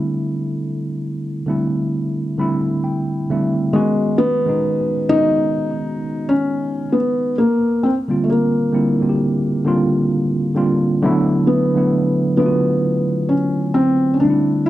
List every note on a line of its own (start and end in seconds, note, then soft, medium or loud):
0.00 1.38 D3 medium
0.00 1.42 G3 medium
0.00 1.39 A3 medium
0.00 1.40 C4 medium
0.00 3.75 C#4 soft
0.00 1.40 E4 medium
0.00 3.76 A4 medium
1.46 2.34 D3 medium
1.46 2.34 G3 medium
1.46 2.35 A3 medium
1.46 2.35 C4 medium
1.46 2.35 E4 medium
2.38 3.25 D3 medium
2.38 3.25 G3 medium
2.38 3.26 A3 medium
2.38 3.26 C4 medium
2.38 3.27 E4 loud
2.38 2.81 B5 medium
2.84 3.26 G5 medium
3.30 3.73 D3 medium
3.30 3.73 G3 medium
3.30 3.73 A3 medium
3.30 3.74 C4 medium
3.30 3.74 E4 medium
3.30 3.72 E5 medium
3.73 4.42 D#3 loud
3.73 4.16 G#3 medium
3.73 4.43 G#3 medium
3.73 4.43 B3 medium
3.73 4.43 C#4 medium
3.73 4.44 F#4 loud
4.18 5.13 B3 loud
4.46 5.07 D#3 medium
4.46 5.07 G#3 medium
4.46 5.08 B3 medium
4.46 5.08 C#4 medium
4.46 5.09 D#4 medium
5.09 6.84 D#3 medium
5.09 6.84 G#3 medium
5.09 6.84 B3 medium
5.09 6.85 C#4 medium
5.09 6.32 D#4 loud
5.09 5.19 D#4 medium
5.18 6.88 F#4 medium
6.29 6.94 C#4 loud
6.92 7.35 B3 medium
7.38 7.85 A#3 medium
7.83 7.92 C4 medium
8.08 8.70 D3 medium
8.08 8.70 G3 medium
8.08 8.71 A#3 medium
8.08 8.71 C4 medium
8.08 8.72 F4 medium
8.24 8.29 A3 medium
8.30 10.53 A#3 medium
8.72 8.99 D3 medium
8.72 9.00 G3 medium
8.72 9.00 A#3 medium
8.72 9.00 C4 medium
8.72 9.01 E4 medium
9.00 9.61 D3 medium
9.00 9.62 G3 medium
9.00 9.62 A#3 medium
9.00 9.63 C4 medium
9.00 9.07 F#4 medium
9.09 9.66 G4 medium
9.65 10.52 D3 medium
9.65 10.53 G3 medium
9.65 10.53 A#3 medium
9.65 10.53 C4 medium
9.65 10.54 F4 loud
10.55 10.99 D3 medium
10.55 10.99 G3 medium
10.55 11.00 A#3 medium
10.55 11.00 C4 medium
10.55 11.00 F4 loud
11.02 11.71 D3 loud
11.02 11.71 F#3 loud
11.02 11.71 A3 loud
11.02 11.72 B3 loud
11.02 11.72 E4 loud
11.47 12.36 B3 medium
11.75 12.35 D3 medium
11.75 12.36 F#3 medium
11.75 12.36 A3 medium
11.75 12.36 B3 medium
11.75 12.37 E4 medium
12.37 14.11 D3 medium
12.37 14.12 F#3 medium
12.37 14.12 A3 medium
12.37 13.31 B3 medium
12.37 12.47 F4 medium
12.37 14.12 B4 medium
12.46 14.16 F#4 medium
13.29 13.76 C#4 medium
13.74 14.15 C4 loud
14.14 14.20 C#4 medium
14.20 14.70 D3 medium
14.20 14.70 G3 medium
14.20 14.70 A3 medium
14.20 14.70 C4 medium
14.20 14.67 D4 medium
14.20 14.30 D#4 medium
14.30 14.70 E4 medium
14.66 14.70 E4 loud